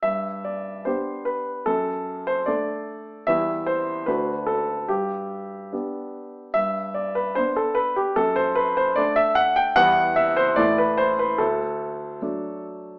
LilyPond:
<<
  \new Staff \with { instrumentName = "Grand piano" } { \time 2/4 \key g \major \tempo 4 = 74 e''8 d''8 c''8 b'8 | a'8. c''16 d''4 | e''8 c''8 b'8 a'8 | g'4. r8 |
e''8 d''16 b'16 c''16 a'16 b'16 g'16 | a'16 c''16 b'16 c''16 d''16 e''16 fis''16 g''16 | fis''8 e''16 c''16 d''16 b'16 c''16 b'16 | a'4. r8 | }
  \new Staff \with { instrumentName = "Grand piano" } { \time 2/4 \key g \major g,4 <b d' g'>4 | fis,4 <a d' a'>4 | <e, g b e'>4 <d, a d' fis'>4 | g,4 <b d' g'>4 |
g,4 <b d'>4 | fis,4 <a d'>4 | <e, g b e'>4 <a, e a e'>4 | d,4 <fis a d'>4 | }
>>